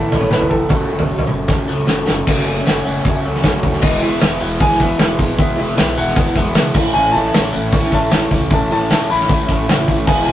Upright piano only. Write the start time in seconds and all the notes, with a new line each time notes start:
Already playing: E5
0.20 C#5
0.31 B4
0.50 A4
3.81 D#5
4.02 E5
4.61 G#5
4.80 E5
5.39 E5
5.59 E5
5.78 E5
5.97 F#5
6.93 G#5
7.12 A5
7.73 C#6
7.94 A5
8.54 A5
8.72 A5
8.92 A5
9.10 B5
10.07 G#5
10.24 G#5